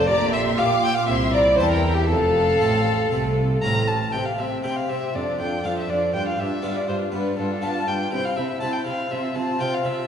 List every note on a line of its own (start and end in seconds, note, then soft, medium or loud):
0.07 0.57 A#1 medium
0.07 0.54 A#2 medium
0.07 0.57 A#2 medium
0.07 0.57 G4 medium
0.07 0.32 D5 medium
0.07 0.33 D5 loud
0.07 0.32 A#5 loud
0.32 0.40 E5 loud
0.32 0.58 E5 medium
0.32 0.57 C6 loud
0.57 1.07 A#2 medium
0.57 1.07 A#3 medium
0.57 1.05 A#3 medium
0.57 1.08 F4 medium
0.57 0.94 F4 medium
0.57 0.95 G4 medium
0.57 0.83 F5 loud
0.57 0.65 F5 medium
0.57 0.83 D6 loud
0.83 0.95 G5 medium
0.83 0.96 G5 medium
0.83 0.96 E6 loud
0.94 1.08 F5 medium
0.94 1.06 F5 medium
0.94 1.08 D6 loud
1.06 1.58 C2 medium
1.06 1.58 C3 medium
1.06 1.55 C3 medium
1.06 2.10 E4 medium
1.06 1.32 E5 medium
1.06 1.15 E5 medium
1.06 1.33 C6 loud
1.32 1.59 D5 medium
1.32 1.58 D5 medium
1.32 1.42 A#5 loud
1.57 2.10 E2 medium
1.57 2.10 E3 medium
1.57 2.06 E3 medium
1.57 1.96 E4 medium
1.57 1.96 G4 medium
1.57 1.70 C5 medium
1.57 1.68 C5 medium
1.57 1.72 A5 loud
1.69 1.96 A#4 medium
1.69 1.95 A#4 medium
1.69 1.97 G5 loud
1.94 2.08 G4 medium
1.94 2.09 G4 medium
1.94 2.10 E5 medium
2.07 2.61 F1 medium
2.07 2.56 F2 medium
2.07 2.61 F2 medium
2.07 3.60 A4 loud
2.07 3.59 A4 loud
2.07 3.90 A4 medium
2.07 3.63 F5 loud
2.61 3.11 A1 medium
2.61 3.11 A2 medium
2.61 3.08 A2 medium
2.61 2.98 A3 soft
2.61 2.98 C4 soft
2.61 2.98 F4 medium
3.11 3.62 C2 medium
3.11 3.61 C3 medium
3.11 3.59 C3 medium
3.11 3.62 A3 medium
3.61 4.13 A1 medium
3.61 4.13 A2 medium
3.61 4.10 A2 medium
3.61 4.00 A3 medium
3.61 4.00 C4 medium
3.61 4.01 F4 medium
3.61 3.89 A#5 loud
3.87 4.14 A5 medium
4.12 4.22 C3 medium
4.12 4.36 C3 soft
4.12 4.37 C4 soft
4.12 4.37 G4 soft
4.12 4.36 C5 soft
4.12 4.27 G5 medium
4.25 4.39 F5 medium
4.38 4.61 C3 soft
4.38 4.47 C3 soft
4.38 4.63 C4 soft
4.38 4.63 G4 soft
4.38 4.61 C5 soft
4.38 4.63 E5 medium
4.62 4.86 C3 soft
4.62 4.72 C3 medium
4.62 5.00 C4 soft
4.62 4.88 C4 soft
4.62 5.00 E4 soft
4.62 4.88 G4 soft
4.62 4.87 C5 soft
4.62 4.78 G5 medium
4.76 4.91 F5 medium
4.88 5.11 C3 soft
4.88 4.97 C3 soft
4.88 5.14 C4 soft
4.88 5.13 G4 soft
4.88 5.13 C5 soft
4.88 5.17 E5 medium
5.13 5.36 F2 soft
5.13 5.23 F2 medium
5.13 5.38 D4 soft
5.13 5.38 F4 soft
5.13 5.38 A4 soft
5.13 5.39 D5 medium
5.39 5.61 F2 soft
5.39 5.47 F2 soft
5.39 5.63 D4 soft
5.39 5.63 F4 soft
5.39 5.63 A4 soft
5.39 5.67 G5 medium
5.63 5.71 F2 soft
5.63 5.87 F2 soft
5.63 6.00 D4 soft
5.63 5.88 D4 soft
5.63 5.88 F4 soft
5.63 6.00 F4 soft
5.63 5.88 A4 soft
5.63 5.77 F5 medium
5.78 5.91 E5 medium
5.89 5.97 F2 soft
5.89 6.11 F2 soft
5.89 6.12 D4 soft
5.89 6.12 F4 soft
5.89 6.13 A4 soft
5.89 6.13 D5 medium
6.13 6.35 G2 soft
6.13 6.21 G2 medium
6.13 6.38 D4 medium
6.13 6.38 F4 soft
6.13 6.37 B4 soft
6.13 6.26 G5 medium
6.28 6.41 F5 medium
6.37 6.60 G2 soft
6.37 6.46 G2 soft
6.37 6.62 D4 soft
6.37 6.62 F4 soft
6.37 6.61 B4 soft
6.37 6.78 E5 medium
6.62 6.85 G2 soft
6.62 6.71 G2 soft
6.62 6.98 B3 soft
6.62 6.98 D4 soft
6.62 6.87 D4 soft
6.62 6.99 F4 soft
6.62 6.85 F4 soft
6.62 6.86 B4 soft
6.77 6.87 D5 medium
6.87 7.10 G2 soft
6.87 6.96 G2 soft
6.87 7.12 D4 soft
6.87 7.12 F4 soft
6.87 7.11 B4 soft
6.87 6.96 C5 medium
7.12 7.35 G2 soft
7.12 7.21 G2 soft
7.12 7.61 B3 soft
7.12 7.36 D4 soft
7.12 7.36 F4 soft
7.12 7.37 B4 soft
7.12 7.37 B4 medium
7.37 7.60 G2 soft
7.37 7.46 G2 soft
7.37 7.61 D4 soft
7.37 7.61 F4 soft
7.37 7.64 A4 medium
7.37 7.62 B4 soft
7.62 7.84 G2 soft
7.62 7.71 G2 medium
7.62 7.98 B3 soft
7.62 7.98 D4 soft
7.62 7.86 D4 soft
7.62 7.98 F4 soft
7.62 7.87 F4 soft
7.62 7.86 B4 soft
7.62 7.89 A5 medium
7.86 8.09 G2 soft
7.86 7.96 G2 soft
7.86 8.11 D4 soft
7.86 8.12 F4 soft
7.86 8.12 B4 soft
7.86 8.12 G5 medium
8.11 8.34 C3 soft
8.11 8.21 C3 medium
8.11 8.35 C4 soft
8.11 8.36 E4 soft
8.11 8.36 C5 medium
8.11 8.26 G5 medium
8.25 8.37 F5 medium
8.35 8.58 C3 soft
8.35 8.45 C3 medium
8.35 8.60 C4 soft
8.35 8.60 E4 soft
8.35 8.60 C5 soft
8.35 8.60 E5 medium
8.60 8.83 C3 soft
8.60 8.70 C3 medium
8.60 8.85 C4 soft
8.60 8.97 E4 soft
8.60 8.85 E4 soft
8.60 8.97 G4 soft
8.60 8.85 C5 soft
8.60 8.74 A5 medium
8.73 8.86 G5 medium
8.85 9.08 C3 soft
8.85 8.95 C3 soft
8.85 9.10 C4 soft
8.85 9.11 E4 soft
8.85 9.10 C5 soft
8.85 9.13 F5 medium
9.10 9.33 C3 soft
9.10 9.20 C3 medium
9.10 9.34 C4 soft
9.10 9.35 F4 medium
9.10 9.35 C5 soft
9.10 9.37 E5 medium
9.35 9.57 C3 soft
9.35 9.43 C3 medium
9.35 9.58 C4 soft
9.35 9.60 F4 soft
9.35 9.60 C5 soft
9.35 9.61 A5 medium
9.59 9.82 C3 soft
9.59 9.68 C3 medium
9.59 9.83 C4 soft
9.59 9.96 F4 soft
9.59 9.86 F4 soft
9.59 9.96 C5 soft
9.59 9.84 C5 medium
9.59 9.75 G5 medium
9.74 9.87 F5 medium
9.83 10.07 C3 soft
9.83 9.92 C3 medium
9.83 10.07 C4 soft
9.83 10.07 C5 medium
9.83 10.07 E5 medium
9.88 10.07 F4 soft